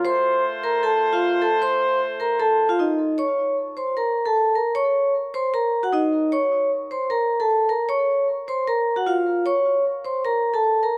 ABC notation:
X:1
M:4/4
L:1/16
Q:1/4=153
K:Ebdor
V:1 name="Vibraphone"
[cc']4 z2 [Bb]2 [=A=a]3 [Ff]3 [Aa]2 | [cc']4 z2 [Bb]2 [=A=a]3 [Ff] [Ee]4 | [dd']4 z2 [cc']2 [Bb]3 [=A=a]3 [Bb]2 | [dd']4 z2 [cc']2 [Bb]3 [Gg] [Ee]4 |
[dd']4 z2 [cc']2 [Bb]3 [=A=a]3 [Bb]2 | [dd']4 z2 [cc']2 [Bb]3 [Gg] [Ff]4 | [dd']4 z2 [cc']2 [Bb]3 [=A=a]3 [Bb]2 |]
V:2 name="Brass ensemble"
[=A,Fc]16- | [=A,Fc]16 | z16 | z16 |
z16 | z16 | z16 |]